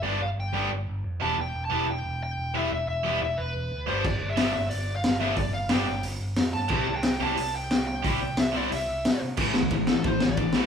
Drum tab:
CC |----------------|----------------|----------------|x---------------|
RD |----------------|----------------|----------------|----------------|
HH |----------------|----------------|----------------|----o---o---o---|
SD |----------------|----------------|----------------|----o-------o---|
BD |----------------|----------------|----------------|o---------------|

CC |----------------|x---------------|----------------|x---------------|
RD |----------------|----------------|----------------|----x---x---x---|
HH |o---o---o---o---|----o---o---o---|o---o---o---o---|----------------|
SD |----o-------o---|----o-------o---|----o-------o---|--o---o---o---o-|
BD |o---------------|o---------------|o---------------|o--oo---o--oo---|